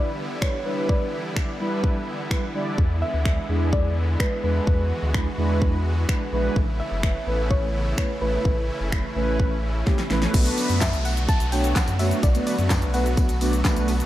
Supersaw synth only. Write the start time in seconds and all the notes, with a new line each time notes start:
Already playing: D3 E3 G3 B3 E4
2.78 G#3
4.67 F#4
6.56 C#3 A3 B3 E4
8.45 C#4
10.34 D3 F#3 A3 B3 F#4